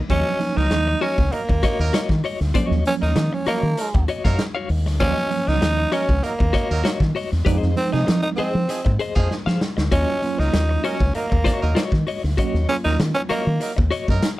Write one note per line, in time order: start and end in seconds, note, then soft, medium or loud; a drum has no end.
0.09 0.22 D#2 loud
0.09 0.31 F3 medium
0.09 0.31 F#3 medium
0.09 0.32 A#3 medium
0.09 0.32 C#4 medium
0.09 0.58 C#4 loud
0.09 0.38 F#4 medium
0.09 0.39 C#5 medium
0.09 0.39 D#5 medium
0.09 kick loud
0.09 closed hi-hat medium
0.26 snare soft
0.39 1.25 F3 medium
0.39 1.26 F#3 medium
0.39 1.26 A#3 medium
0.39 1.26 D#4 medium
0.39 closed hi-hat medium
0.56 0.67 C#2 medium
0.56 0.66 F#3 medium
0.56 0.66 D#4 medium
0.56 1.03 D#4 loud
0.56 0.66 A#4 medium
0.56 muted clean electric guitar stroke soft
0.56 snare soft
0.71 0.94 D#2 medium
0.71 muted clean electric guitar stroke soft
0.71 snare loud
0.71 closed hi-hat medium
0.88 muted clean electric guitar stroke medium
1.01 1.12 F#3 medium
1.01 1.34 C#4 medium
1.01 1.12 D#4 medium
1.01 1.20 F#4 medium
1.01 1.11 A#4 medium
1.01 1.18 C#5 medium
1.01 1.17 D#5 medium
1.01 open hi-hat soft
1.18 1.29 C#2 medium
1.18 muted clean electric guitar stroke soft
1.18 kick medium
1.31 1.42 F#3 medium
1.31 2.24 A#3 medium
1.31 1.42 D#4 medium
1.31 1.42 A#4 medium
1.31 muted clean electric guitar stroke soft
1.31 closed hi-hat medium
1.49 1.60 D#2 medium
1.49 muted clean electric guitar stroke medium
1.49 kick medium
1.63 1.81 F#4 loud
1.63 1.79 C#5 loud
1.63 1.78 D#5 loud
1.63 kick loud
1.63 snare soft
1.63 closed hi-hat medium
1.79 1.90 D#2 medium
1.79 1.98 F#3 medium
1.79 1.98 D#4 medium
1.79 1.99 A#4 loud
1.79 muted clean electric guitar stroke medium
1.93 2.12 F#4 medium
1.93 2.10 C#5 medium
1.93 2.09 D#5 medium
1.93 snare loud
1.93 closed hi-hat medium
2.09 2.20 D#3 loud
2.09 muted clean electric guitar stroke medium
2.09 kick medium
2.09 snare soft
2.24 2.39 F#4 medium
2.24 2.39 C#5 medium
2.24 2.39 D#5 medium
2.24 open hi-hat medium
2.40 2.51 D2 loud
2.40 muted clean electric guitar stroke soft
2.40 snare soft
2.54 2.77 F3 medium
2.54 2.77 F#3 medium
2.54 2.77 A#3 medium
2.54 2.77 C#4 medium
2.54 2.66 F4 medium
2.54 2.67 C5 medium
2.54 2.68 D5 medium
2.54 kick loud
2.54 closed hi-hat medium
2.66 2.83 F#4 medium
2.66 2.83 C#5 medium
2.66 2.84 D#5 medium
2.71 2.82 D#2 medium
2.71 snare soft
2.85 3.71 F3 medium
2.85 3.71 F#3 medium
2.85 3.71 A#3 medium
2.85 3.72 C#4 medium
2.85 2.94 C#4 loud
2.85 closed hi-hat medium
3.01 3.13 D#2 medium
3.01 3.10 F#3 medium
3.01 3.11 D#4 medium
3.01 3.35 D#4 medium
3.01 3.11 A#4 medium
3.01 muted clean electric guitar stroke medium
3.01 snare soft
3.16 3.28 D#3 medium
3.16 muted clean electric guitar stroke soft
3.16 snare loud
3.16 closed hi-hat medium
3.33 3.47 C#4 medium
3.33 muted clean electric guitar stroke soft
3.46 3.57 F#3 medium
3.46 4.05 A#3 medium
3.46 3.57 D#4 medium
3.46 3.65 F#4 medium
3.46 3.57 A#4 medium
3.46 3.63 C#5 medium
3.46 3.62 D#5 medium
3.46 muted fingered electric bass stroke soft
3.46 closed hi-hat medium
3.63 3.74 D#3 medium
3.63 muted clean electric guitar stroke medium
3.77 3.88 F#3 medium
3.77 3.88 D#4 medium
3.77 3.88 A#4 medium
3.77 muted clean electric guitar stroke soft
3.77 closed hi-hat medium
3.94 4.05 D#2 medium
3.94 muted clean electric guitar stroke medium
3.94 kick medium
4.08 4.23 F#4 medium
4.08 4.23 C#5 medium
4.08 4.24 D#5 medium
4.08 closed hi-hat medium
4.24 4.36 F#2 medium
4.24 4.44 F#3 loud
4.24 4.44 D#4 medium
4.24 4.38 F#4 soft
4.24 4.44 A#4 loud
4.24 4.38 C#5 medium
4.24 4.38 F5 medium
4.24 kick medium
4.24 snare soft
4.39 muted clean electric guitar stroke soft
4.39 snare loud
4.39 closed hi-hat medium
4.55 4.69 F#4 medium
4.55 4.70 C#5 medium
4.55 4.71 F5 medium
4.69 4.86 D#2 loud
4.69 muted clean electric guitar stroke soft
4.69 open hi-hat medium
4.86 5.00 D2 loud
4.86 muted clean electric guitar stroke medium
4.86 snare soft
5.00 5.13 D#2 loud
5.00 5.22 F3 medium
5.00 5.22 F#3 medium
5.00 5.23 A#3 medium
5.00 5.49 C#4 loud
5.00 5.23 C#4 medium
5.00 5.12 F4 medium
5.00 5.13 C5 medium
5.00 5.14 D5 loud
5.00 kick medium
5.00 closed hi-hat medium
5.12 5.29 F#4 medium
5.12 5.29 C#5 medium
5.12 5.30 D#5 loud
5.17 snare soft
5.30 6.16 F3 medium
5.30 6.17 F#3 medium
5.30 6.17 A#3 medium
5.30 6.17 C#4 medium
5.30 closed hi-hat medium
5.47 5.58 C#2 medium
5.47 5.56 F#3 medium
5.47 5.57 D#4 medium
5.47 5.94 D#4 loud
5.47 5.57 A#4 medium
5.47 muted clean electric guitar stroke soft
5.47 snare soft
5.61 5.85 D#2 medium
5.61 muted clean electric guitar stroke soft
5.61 snare loud
5.61 closed hi-hat medium
5.78 muted clean electric guitar stroke soft
5.92 6.03 F#3 medium
5.92 6.25 C#4 medium
5.92 6.03 D#4 medium
5.92 6.11 F#4 medium
5.92 6.03 A#4 medium
5.92 6.08 C#5 loud
5.92 6.07 D#5 medium
5.92 closed hi-hat medium
6.08 6.20 C#2 medium
6.08 muted clean electric guitar stroke soft
6.08 kick medium
6.23 6.34 F#3 medium
6.23 7.15 A#3 medium
6.23 6.33 D#4 medium
6.23 6.34 A#4 medium
6.23 muted clean electric guitar stroke soft
6.23 closed hi-hat medium
6.39 6.51 D#2 medium
6.39 muted clean electric guitar stroke soft
6.39 kick medium
6.53 6.72 F#4 loud
6.53 6.70 C#5 loud
6.53 6.68 D#5 loud
6.53 kick medium
6.53 snare soft
6.53 closed hi-hat medium
6.70 6.81 D#2 medium
6.70 6.90 F#3 loud
6.70 6.90 D#4 medium
6.70 6.90 A#4 loud
6.70 muted clean electric guitar stroke soft
6.84 7.03 F#4 medium
6.84 7.01 C#5 medium
6.84 6.99 D#5 medium
6.84 snare loud
6.84 closed hi-hat medium
7.00 7.11 D#3 loud
7.00 muted clean electric guitar stroke soft
7.00 kick medium
7.00 snare soft
7.15 7.30 F#4 medium
7.15 7.30 C#5 medium
7.15 7.30 D#5 medium
7.15 open hi-hat medium
7.31 7.43 E2 medium
7.31 muted clean electric guitar stroke soft
7.31 snare soft
7.45 7.58 F2 loud
7.45 7.68 F3 medium
7.45 7.68 G#3 medium
7.45 7.68 C4 medium
7.45 7.68 D#4 loud
7.45 7.57 G4 medium
7.45 7.58 B4 medium
7.45 7.59 D5 medium
7.45 kick loud
7.45 closed hi-hat medium
7.57 7.74 G#4 medium
7.57 7.74 C5 medium
7.57 7.75 D#5 medium
7.62 7.73 F2 loud
7.62 snare soft
7.76 8.62 F3 medium
7.76 8.62 G#3 medium
7.76 7.92 C4 medium
7.76 8.63 C4 medium
7.76 8.63 D#4 medium
7.76 closed hi-hat medium
7.92 8.04 C3 medium
7.92 8.02 F3 medium
7.92 8.21 D#4 medium
7.92 8.02 D#4 medium
7.92 8.02 G#4 medium
7.92 muted clean electric guitar stroke medium
7.92 snare soft
8.07 8.20 F3 medium
8.07 muted clean electric guitar stroke soft
8.07 snare loud
8.07 closed hi-hat medium
8.22 8.29 D#4 medium
8.22 muted clean electric guitar stroke soft
8.36 8.49 F3 medium
8.36 8.95 C4 medium
8.36 8.48 D#4 medium
8.36 8.57 G#4 medium
8.36 8.48 G#4 medium
8.36 8.54 C5 medium
8.36 8.53 D#5 medium
8.36 muted fingered electric bass stroke soft
8.36 closed hi-hat medium
8.54 8.65 F3 medium
8.54 muted clean electric guitar stroke soft
8.68 8.79 F3 medium
8.68 8.79 D#4 medium
8.68 8.79 G#4 medium
8.68 muted clean electric guitar stroke soft
8.68 closed hi-hat medium
8.85 8.96 G#2 medium
8.85 muted clean electric guitar stroke medium
8.85 kick medium
8.99 9.14 G#4 medium
8.99 9.15 C5 medium
8.99 9.15 D#5 medium
8.99 closed hi-hat medium
9.16 9.27 F2 medium
9.16 9.35 F3 medium
9.16 9.35 D#4 medium
9.16 9.35 G#4 loud
9.16 9.29 G#4 medium
9.16 9.29 C5 medium
9.16 9.29 F5 medium
9.16 kick medium
9.30 muted clean electric guitar stroke soft
9.30 snare medium
9.46 9.57 F3 loud
9.46 9.60 G#4 medium
9.46 9.61 C5 medium
9.46 9.62 F5 medium
9.46 snare medium
9.61 muted clean electric guitar stroke soft
9.61 snare medium
9.77 9.88 D2 medium
9.77 muted clean electric guitar stroke medium
9.77 snare medium
9.91 10.04 D#2 medium
9.91 10.13 F#3 medium
9.91 10.14 A#3 medium
9.91 10.14 C#4 medium
9.91 10.40 C#4 loud
9.91 10.14 F4 medium
9.91 10.20 F#4 medium
9.91 10.20 C#5 medium
9.91 10.21 D#5 medium
9.91 kick loud
9.91 closed hi-hat medium
10.08 snare soft
10.22 11.08 F#3 medium
10.22 11.08 A#3 medium
10.22 11.09 C#4 medium
10.22 11.09 F4 medium
10.22 closed hi-hat medium
10.38 10.50 C#2 medium
10.38 10.48 F#3 medium
10.38 10.48 D#4 medium
10.38 10.85 D#4 medium
10.38 10.48 A#4 medium
10.38 muted clean electric guitar stroke soft
10.38 snare soft
10.53 10.76 D#2 medium
10.53 muted clean electric guitar stroke soft
10.53 snare loud
10.53 closed hi-hat medium
10.69 muted clean electric guitar stroke soft
10.84 10.94 F#3 medium
10.84 11.14 C#4 medium
10.84 10.94 D#4 medium
10.84 11.02 F#4 medium
10.84 10.94 A#4 medium
10.84 11.00 C#5 medium
10.84 10.99 D#5 medium
10.84 closed hi-hat medium
11.00 11.11 C#2 medium
11.00 muted clean electric guitar stroke soft
11.00 kick medium
11.13 11.25 F#3 medium
11.13 12.03 A#3 medium
11.13 11.26 D#4 medium
11.13 11.26 A#4 medium
11.13 muted clean electric guitar stroke soft
11.13 closed hi-hat medium
11.30 11.42 D#2 medium
11.30 muted clean electric guitar stroke soft
11.30 kick medium
11.44 11.66 F#4 medium
11.44 11.61 C#5 loud
11.44 11.60 D#5 loud
11.44 kick medium
11.44 snare soft
11.44 closed hi-hat medium
11.61 11.73 D#2 medium
11.61 11.81 F#3 medium
11.61 11.81 D#4 loud
11.61 11.81 A#4 loud
11.61 muted clean electric guitar stroke soft
11.75 11.96 F#4 medium
11.75 11.92 C#5 medium
11.75 11.91 D#5 medium
11.75 snare loud
11.75 closed hi-hat medium
11.92 12.03 D#3 loud
11.92 muted clean electric guitar stroke medium
11.92 kick medium
11.92 snare soft
12.07 12.22 F#4 medium
12.07 12.22 C#5 medium
12.07 12.22 D#5 medium
12.07 open hi-hat medium
12.23 12.34 D2 medium
12.23 muted clean electric guitar stroke soft
12.23 snare soft
12.37 12.59 F#3 medium
12.37 12.60 A#3 medium
12.37 12.60 C#4 medium
12.37 12.66 F#4 medium
12.37 12.60 F#4 medium
12.37 12.67 C#5 medium
12.37 12.67 D#5 medium
12.37 kick loud
12.37 closed hi-hat medium
12.54 12.65 D#2 medium
12.54 snare soft
12.68 13.54 F#3 medium
12.68 13.55 A#3 medium
12.68 12.76 C#4 loud
12.68 13.55 C#4 medium
12.68 13.55 F4 medium
12.68 closed hi-hat medium
12.84 12.96 D#2 medium
12.84 12.94 F#3 medium
12.84 12.98 D#4 medium
12.84 12.94 D#4 medium
12.84 12.94 A#4 medium
12.84 muted clean electric guitar stroke soft
12.84 snare soft
12.99 13.11 D#3 medium
12.99 muted clean electric guitar stroke soft
12.99 snare loud
12.99 closed hi-hat medium
13.14 13.21 C#4 medium
13.14 muted clean electric guitar stroke soft
13.29 13.40 F#3 medium
13.29 13.87 A#3 medium
13.29 13.41 D#4 medium
13.29 13.48 F#4 medium
13.29 13.40 A#4 medium
13.29 13.47 C#5 medium
13.29 13.45 D#5 loud
13.29 muted fingered electric bass stroke soft
13.29 closed hi-hat medium
13.46 13.57 D#3 medium
13.46 muted clean electric guitar stroke soft
13.60 13.72 F#3 medium
13.60 13.72 D#4 medium
13.60 13.72 A#4 medium
13.60 muted clean electric guitar stroke soft
13.60 closed hi-hat medium
13.77 13.88 D#2 medium
13.77 muted clean electric guitar stroke medium
13.77 kick medium
13.91 14.10 F#4 medium
13.91 14.08 C#5 loud
13.91 14.07 D#5 loud
13.91 closed hi-hat medium
14.08 14.19 F#2 medium
14.08 14.28 F#3 medium
14.08 14.28 D#4 loud
14.08 14.28 A#4 loud
14.08 muted clean electric guitar stroke medium
14.08 kick medium
14.22 muted clean electric guitar stroke soft
14.22 snare loud
14.22 closed hi-hat medium